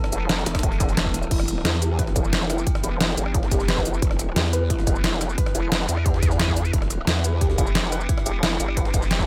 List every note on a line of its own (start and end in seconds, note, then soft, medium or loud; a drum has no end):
0.00 9.26 E3 medium
0.00 9.26 B3 medium
0.00 9.26 E4 medium
0.00 1.30 A4 medium
0.00 cross-stick medium
0.00 snare medium
0.12 0.28 E1 loud
0.12 closed hi-hat loud
0.12 closed hi-hat medium
0.12 shaker medium
0.29 0.45 F1 loud
0.29 snare loud
0.29 closed hi-hat medium
0.38 cross-stick soft
0.38 snare soft
0.46 0.62 E1 loud
0.46 snare loud
0.46 closed hi-hat loud
0.46 closed hi-hat medium
0.46 shaker medium
0.55 kick medium
0.55 cross-stick medium
0.55 snare medium
0.55 closed hi-hat medium
0.59 snare medium
0.59 closed hi-hat medium
0.63 0.96 E1 loud
0.63 kick loud
0.63 closed hi-hat medium
0.72 snare soft
0.80 kick loud
0.80 snare soft
0.80 closed hi-hat loud
0.80 closed hi-hat medium
0.80 shaker medium
0.89 snare soft
0.89 shaker soft
0.97 1.30 E1 loud
0.97 snare loud
0.97 closed hi-hat medium
1.06 kick medium
1.14 snare soft
1.14 closed hi-hat medium
1.14 closed hi-hat loud
1.14 shaker medium
1.23 closed hi-hat soft
1.23 shaker soft
1.31 1.64 E1 loud
1.31 1.40 E4 medium
1.31 4.01 G4 medium
1.31 kick loud
1.31 closed hi-hat medium
1.31 crash medium
1.40 cross-stick medium
1.40 snare soft
1.48 closed hi-hat medium
1.48 shaker medium
1.65 2.15 E2 loud
1.65 1.78 E4 medium
1.65 snare loud
1.65 closed hi-hat medium
1.73 snare soft
1.82 1.87 G4 medium
1.82 closed hi-hat loud
1.82 closed hi-hat medium
1.82 shaker medium
1.99 2.12 B4 loud
1.99 kick loud
1.99 closed hi-hat medium
2.07 snare soft
2.16 2.65 F1 loud
2.16 2.24 E4 medium
2.16 kick loud
2.16 closed hi-hat medium
2.16 shaker medium
2.24 shaker soft
2.33 snare loud
2.33 closed hi-hat medium
2.41 snare soft
2.50 2.63 E4 medium
2.50 cross-stick medium
2.50 snare medium
2.50 closed hi-hat medium
2.50 open hi-hat medium
2.50 shaker medium
2.58 shaker soft
2.67 2.72 G4 medium
2.67 kick loud
2.67 closed hi-hat medium
2.75 cross-stick medium
2.75 snare soft
2.84 2.99 E1 loud
2.84 2.97 B4 loud
2.84 closed hi-hat medium
2.84 shaker medium
3.01 3.16 F1 medium
3.01 3.09 E4 medium
3.01 snare loud
3.01 closed hi-hat medium
3.09 cross-stick soft
3.09 snare soft
3.18 3.50 G1 loud
3.18 closed hi-hat medium
3.18 closed hi-hat loud
3.18 shaker medium
3.26 cross-stick medium
3.34 3.47 E4 medium
3.34 kick loud
3.34 closed hi-hat medium
3.43 snare soft
3.51 4.01 F1 loud
3.51 3.57 G4 medium
3.51 kick loud
3.51 snare soft
3.51 closed hi-hat loud
3.51 closed hi-hat medium
3.51 shaker medium
3.60 snare soft
3.60 shaker soft
3.68 3.81 B4 loud
3.68 snare loud
3.68 closed hi-hat medium
3.77 kick medium
3.77 snare soft
3.85 3.94 E4 medium
3.85 closed hi-hat medium
3.85 open hi-hat medium
3.85 shaker medium
3.94 shaker soft
4.02 4.35 E1 loud
4.02 6.72 B4 medium
4.02 kick loud
4.02 closed hi-hat medium
4.11 cross-stick medium
4.11 snare soft
4.19 4.32 E4 medium
4.19 closed hi-hat medium
4.19 shaker medium
4.36 4.86 E2 loud
4.36 4.41 G4 medium
4.36 snare loud
4.36 closed hi-hat medium
4.45 snare soft
4.53 4.66 B4 loud
4.53 closed hi-hat medium
4.53 shaker medium
4.70 4.79 E4 medium
4.70 kick loud
4.70 closed hi-hat medium
4.79 snare soft
4.87 5.37 F1 loud
4.87 kick loud
4.87 closed hi-hat medium
4.87 shaker medium
4.96 shaker soft
5.04 5.17 E4 medium
5.04 snare loud
5.04 closed hi-hat medium
5.12 snare soft
5.21 5.26 G4 medium
5.21 cross-stick soft
5.21 snare medium
5.21 closed hi-hat medium
5.21 open hi-hat medium
5.21 shaker medium
5.29 shaker soft
5.38 5.51 B4 loud
5.38 kick loud
5.38 closed hi-hat medium
5.46 cross-stick medium
5.46 snare soft
5.55 5.70 E1 loud
5.55 5.63 E4 medium
5.55 closed hi-hat medium
5.55 shaker medium
5.72 5.87 F1 loud
5.72 snare loud
5.72 closed hi-hat medium
5.80 cross-stick soft
5.80 snare soft
5.89 6.72 E2 medium
5.89 6.02 E4 medium
5.89 closed hi-hat medium
5.89 shaker medium
5.97 cross-stick medium
6.06 6.11 G4 medium
6.06 kick loud
6.06 closed hi-hat medium
6.14 snare soft
6.23 kick loud
6.23 snare soft
6.23 closed hi-hat medium
6.23 shaker medium
6.31 snare soft
6.31 shaker soft
6.40 6.48 E4 loud
6.40 snare loud
6.40 closed hi-hat medium
6.48 kick medium
6.56 snare soft
6.56 closed hi-hat medium
6.56 open hi-hat medium
6.56 shaker medium
6.65 closed hi-hat soft
6.65 shaker soft
6.73 7.06 E1 loud
6.73 6.86 E4 medium
6.73 9.26 G4 medium
6.73 kick loud
6.73 closed hi-hat medium
6.82 cross-stick medium
6.82 snare soft
6.90 closed hi-hat medium
6.90 shaker medium
7.07 7.57 E2 loud
7.07 7.20 B4 loud
7.07 snare loud
7.07 closed hi-hat medium
7.16 snare soft
7.24 7.33 E4 medium
7.24 closed hi-hat medium
7.24 shaker medium
7.41 7.46 G4 medium
7.41 kick loud
7.41 closed hi-hat medium
7.50 snare soft
7.58 8.08 F1 loud
7.58 7.71 E4 medium
7.58 kick loud
7.58 closed hi-hat medium
7.58 shaker medium
7.67 shaker soft
7.75 snare loud
7.75 closed hi-hat medium
7.84 snare soft
7.92 8.05 B4 loud
7.92 cross-stick soft
7.92 snare medium
7.92 closed hi-hat medium
7.92 open hi-hat medium
7.92 shaker medium
8.01 shaker soft
8.09 8.18 E4 medium
8.09 kick loud
8.09 closed hi-hat medium
8.18 cross-stick medium
8.18 snare soft
8.26 8.42 E1 loud
8.26 8.31 G4 medium
8.26 closed hi-hat loud
8.26 closed hi-hat medium
8.26 shaker medium
8.43 8.59 F1 medium
8.43 8.56 E4 medium
8.43 snare loud
8.43 closed hi-hat medium
8.51 cross-stick soft
8.51 snare soft
8.60 8.93 G1 loud
8.60 closed hi-hat loud
8.60 closed hi-hat medium
8.60 shaker medium
8.68 cross-stick medium
8.77 8.90 B4 loud
8.77 kick loud
8.77 closed hi-hat medium
8.85 snare soft
8.94 9.26 F1 loud
8.94 9.02 E4 medium
8.94 kick loud
8.94 snare soft
8.94 closed hi-hat medium
8.94 shaker medium
9.02 snare soft
9.02 shaker soft
9.11 9.16 G4 medium
9.11 snare loud
9.11 closed hi-hat medium
9.19 kick medium
9.19 snare soft